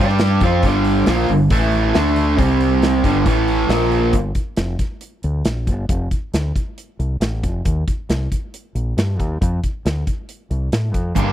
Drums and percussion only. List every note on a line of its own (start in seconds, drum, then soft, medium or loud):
0.09 snare soft
0.19 snare loud
0.19 open hi-hat medium
0.40 kick loud
0.40 open hi-hat soft
0.63 kick loud
0.63 open hi-hat medium
0.85 open hi-hat medium
1.06 snare loud
1.06 open hi-hat medium
1.29 open hi-hat medium
1.50 kick loud
1.50 open hi-hat medium
1.72 open hi-hat medium
1.94 snare loud
1.94 open hi-hat medium
2.16 open hi-hat medium
2.38 kick medium
2.38 open hi-hat medium
2.61 open hi-hat medium
2.82 snare loud
2.82 open hi-hat medium
3.04 kick loud
3.04 open hi-hat soft
3.26 kick loud
3.26 open hi-hat medium
3.48 open hi-hat medium
3.70 snare loud
3.70 open hi-hat medium
3.92 open hi-hat soft
4.13 kick medium
4.13 closed hi-hat medium
4.35 kick medium
4.35 closed hi-hat medium
4.57 snare loud
4.57 closed hi-hat medium
4.79 kick medium
4.79 snare soft
4.79 closed hi-hat medium
5.01 closed hi-hat medium
5.23 closed hi-hat medium
5.45 snare loud
5.45 closed hi-hat medium
5.67 kick medium
5.67 closed hi-hat medium
5.89 kick loud
5.89 closed hi-hat medium
6.11 kick medium
6.11 closed hi-hat medium
6.34 snare loud
6.34 closed hi-hat medium
6.56 kick medium
6.56 closed hi-hat medium
6.78 closed hi-hat medium
7.00 closed hi-hat medium
7.21 snare loud
7.21 closed hi-hat medium
7.43 kick medium
7.43 closed hi-hat medium
7.65 kick loud
7.65 closed hi-hat medium
7.88 kick medium
7.88 closed hi-hat medium
8.10 snare loud
8.10 closed hi-hat medium
8.32 kick medium
8.32 closed hi-hat medium
8.54 closed hi-hat medium
8.76 closed hi-hat medium
8.98 snare loud
8.98 closed hi-hat medium
9.20 kick medium
9.20 closed hi-hat medium
9.42 kick loud
9.42 closed hi-hat medium
9.64 kick medium
9.64 closed hi-hat medium
9.86 snare loud
9.86 closed hi-hat medium
10.07 kick medium
10.07 closed hi-hat medium
10.29 closed hi-hat medium
10.51 closed hi-hat soft
10.72 snare loud
10.72 closed hi-hat medium
10.94 kick medium
10.94 closed hi-hat medium
11.16 kick medium
11.16 closed hi-hat medium
11.16 shaker medium